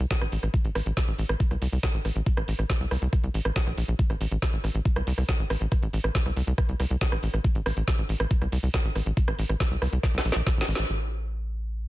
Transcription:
0.11 kick, snare, closed hi-hat
0.21 A1, cross-stick, closed hi-hat
0.32 A1, open hi-hat
0.43 A1, cross-stick, closed hi-hat
0.54 kick, closed hi-hat
0.65 A1, closed hi-hat
0.75 A1, cross-stick, open hi-hat
0.86 A1, closed hi-hat
0.97 kick, cross-stick, snare, closed hi-hat
1.08 A1, closed hi-hat
1.19 A1, open hi-hat
1.29 A1, cross-stick, closed hi-hat
1.40 kick, closed hi-hat
1.51 C2, cross-stick, closed hi-hat
1.62 C2, open hi-hat
1.73 C2, open hi-hat
1.83 kick, cross-stick, snare
1.94 A1, closed hi-hat
2.05 A1, cross-stick, open hi-hat
2.16 A1, closed hi-hat
2.26 kick, closed hi-hat
2.37 A1, cross-stick, closed hi-hat
2.48 A1, open hi-hat
2.59 A1, cross-stick, closed hi-hat
2.70 kick, snare, closed hi-hat
2.80 C2, closed hi-hat
2.91 C2, cross-stick, open hi-hat
3.02 C2, closed hi-hat
3.13 kick, cross-stick, closed hi-hat
3.24 C2, closed hi-hat
3.34 A1, open hi-hat
3.45 A1, cross-stick, closed hi-hat
3.56 kick, snare, closed hi-hat
3.67 A#1, cross-stick, closed hi-hat
3.77 A#1, open hi-hat
3.88 A#1, closed hi-hat
3.99 kick, closed hi-hat
4.10 A1, cross-stick, closed hi-hat
4.21 A1, open hi-hat
4.31 A1, closed hi-hat
4.42 kick, cross-stick, snare, closed hi-hat
4.53 A1, closed hi-hat
4.64 A1, cross-stick, open hi-hat
4.75 A1, closed hi-hat
4.85 kick, closed hi-hat
4.96 C2, cross-stick, closed hi-hat
5.07 C2, open hi-hat
5.18 C2, cross-stick, open hi-hat
5.29 kick, snare, closed hi-hat
5.39 A1, closed hi-hat
5.50 A1, cross-stick, open hi-hat
5.61 A1, closed hi-hat
5.72 kick, cross-stick, closed hi-hat
5.83 A1, closed hi-hat
5.93 A1, open hi-hat
6.04 A1, cross-stick, closed hi-hat
6.15 kick, snare, closed hi-hat
6.26 C2, cross-stick, closed hi-hat
6.36 C2, open hi-hat
6.47 C2, closed hi-hat
6.58 kick, cross-stick, closed hi-hat
6.69 C2, closed hi-hat
6.80 C2, cross-stick, open hi-hat
6.90 C2, closed hi-hat
7.01 kick, snare, closed hi-hat
7.12 A1, cross-stick, closed hi-hat
7.23 A1, open hi-hat
7.34 A1, cross-stick, closed hi-hat
7.44 kick, closed hi-hat
7.55 A1, closed hi-hat
7.66 A1, cross-stick, open hi-hat
7.77 A1, closed hi-hat
7.88 kick, cross-stick, snare, closed hi-hat
7.98 A1, closed hi-hat
8.09 A1, open hi-hat
8.20 A1, cross-stick, closed hi-hat
8.31 kick, closed hi-hat
8.42 C2, cross-stick, closed hi-hat
8.52 C2, open hi-hat
8.63 C2, open hi-hat
8.74 kick, cross-stick, snare, closed hi-hat
8.85 A1, closed hi-hat
8.95 A1, cross-stick, open hi-hat
9.06 A1, closed hi-hat
9.17 kick, closed hi-hat
9.28 A1, cross-stick, closed hi-hat
9.39 A1, open hi-hat
9.49 A1, cross-stick, closed hi-hat
9.60 kick, snare, closed hi-hat
9.71 C2, closed hi-hat
9.82 C2, cross-stick, open hi-hat
9.93 C2, closed hi-hat
10.03 kick, snare, closed hi-hat
10.14 C2, snare, closed hi-hat
10.25 A#1, open hi-hat
10.32 A#1, snare, closed hi-hat
10.47 kick, snare, closed hi-hat
10.57 A1, snare, closed hi-hat
10.68 A1, open hi-hat
10.75 A1, snare, closed hi-hat
10.90 A1

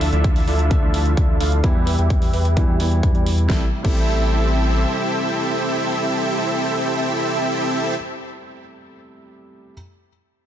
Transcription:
Already playing: D2 D3 F3 A3 E5
0.01 open hi-hat
0.13 D2 D4 E4 F4 A4 E5, closed hi-hat
0.24 kick, closed hi-hat
0.36 open hi-hat
0.47 D2 D4 E4 F4 A4 E5, open hi-hat
0.59 closed hi-hat
0.70 D3 F3 A3 E5, kick, closed hi-hat
0.82 D2 D4 E4 F4 A4 E5
0.94 open hi-hat
1.06 closed hi-hat
1.17 D2 D4 E4 F4 A4 E5, kick, closed hi-hat
1.40 D2 D4 E4 F4 A4 F5, open hi-hat
1.52 closed hi-hat
1.63 E2 B2 E3 G3 E4 G4 B4 E5, kick, closed hi-hat
1.87 open hi-hat
1.99 E2 G4 B4 E5, closed hi-hat
2.10 kick, closed hi-hat
2.22 open hi-hat
2.33 E2 G4 B4 E5, open hi-hat
2.45 closed hi-hat
2.56 B2 E3 G3 E4, kick, closed hi-hat
2.68 E2 G4 B4 E5
2.79 B2 E3 G3 E4, open hi-hat
2.92 closed hi-hat
3.03 E2, kick, closed hi-hat
3.15 E2 G4 B4 D5, closed hi-hat
3.26 open hi-hat
3.38 closed hi-hat
3.48 A1 C3 G3 A3 C4 E4 G4 A4 E5, kick, snare
3.83 A1 C3 G3 A3 C4 E4 G4 A4 E5, kick, crash

